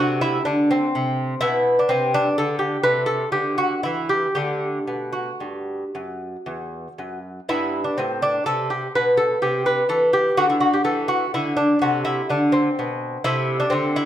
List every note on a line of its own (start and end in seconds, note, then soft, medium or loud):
0.00 0.37 C3 medium
0.00 1.39 A3 soft
0.00 0.21 F#4 medium
0.21 0.45 E4 medium
0.45 0.85 D3 medium
0.45 0.69 D4 medium
0.71 1.40 C4 medium
0.95 1.34 C3 medium
1.41 1.80 B2 medium
1.41 2.79 B3 soft
1.41 1.76 E4 loud
1.79 1.91 D4 medium
1.89 2.27 C3 medium
1.89 2.12 C4 medium
2.14 2.36 D4 loud
2.38 2.76 D3 medium
2.38 2.58 A4 medium
2.59 2.82 G4 medium
2.83 3.24 C3 medium
2.83 4.32 A3 soft
2.83 3.06 B4 loud
3.06 3.31 A4 medium
3.32 3.74 D3 medium
3.32 3.57 G4 medium
3.58 3.83 F#4 medium
3.83 4.26 E3 medium
3.83 4.09 E4 medium
4.09 4.34 G4 medium
4.35 4.78 D3 medium
4.35 7.44 A3 soft
4.35 5.11 G4 medium
4.87 5.30 B2 medium
5.13 7.17 F#4 medium
5.40 5.83 G2 soft
5.95 6.35 F#2 soft
6.46 6.87 E2 soft
6.98 7.39 F#2 soft
7.49 7.89 G2 medium
7.49 10.38 B3 soft
7.49 7.84 E4 medium
7.84 7.98 D4 medium
7.98 8.39 A2 medium
7.98 8.22 C4 medium
8.22 8.46 D4 medium
8.46 8.86 C3 soft
8.46 8.70 A4 medium
8.70 8.95 G4 medium
8.95 9.35 B2 medium
8.95 9.17 B4 medium
9.17 9.41 A4 medium
9.42 9.82 C3 medium
9.42 9.66 G4 medium
9.66 9.89 B4 medium
9.89 10.29 E3 medium
9.89 10.13 A4 medium
10.13 10.38 G4 medium
10.37 10.77 D3 medium
10.37 11.78 A3 soft
10.37 10.49 F#4 loud
10.50 10.60 E4 medium
10.60 10.74 F#4 medium
10.73 10.84 G4 medium
10.84 11.24 E3 medium
10.84 11.09 A4 medium
11.08 11.33 F#4 medium
11.34 11.73 D3 medium
11.34 11.56 E4 medium
11.57 11.81 D4 medium
11.82 12.20 C3 medium
11.82 13.20 A3 soft
11.82 12.04 F#4 medium
12.05 12.29 E4 medium
12.30 12.68 D3 medium
12.30 12.53 D4 medium
12.52 13.21 C4 medium
12.79 13.16 B2 medium
13.24 13.64 C3 medium
13.24 14.05 A3 soft
13.24 13.59 E4 loud
13.60 13.73 D4 medium
13.70 14.05 D3 medium
13.70 13.95 C4 medium
13.96 14.05 E4 loud